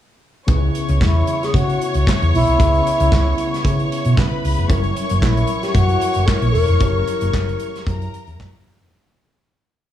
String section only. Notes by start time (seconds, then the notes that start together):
0.48 C#5 C#6
4.16 B4 B5
4.68 C#5 C#6
7.86 A#4 A#5